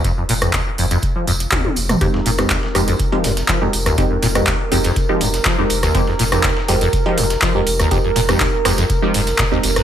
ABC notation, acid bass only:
X:1
M:4/4
L:1/16
Q:1/4=122
K:Fm
V:1 name="Acid bass" clef=bass
F,, F,, B,, F,, E,, z F,, F,, z F, F,, z E,, F, z C, | F,, F,, B,, F,, E,, z F,, F,, z F, F,, z F, F,, z E,, | F,, F,, B,, F,, z2 F,, F,, z F, F,, z F, F,, z E,, | F,, F,, B,, F,, E,, z F,, F,, z F, F,, z F, F,, z E,, |
F,, F,, B,, F,, E,, z F,, F,, z F, A,, z B,, E,, F,,, F,, |]